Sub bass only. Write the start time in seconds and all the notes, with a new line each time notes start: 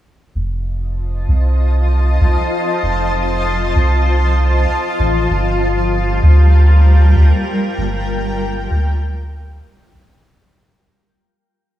0.35 F1
1.28 C2
2.21 C2
2.83 F1
3.76 C2
4.99 A1
5.30 G1
6.23 D2
7.16 D2
7.78 G1
8.71 D2
9.95 C2
10.12 F1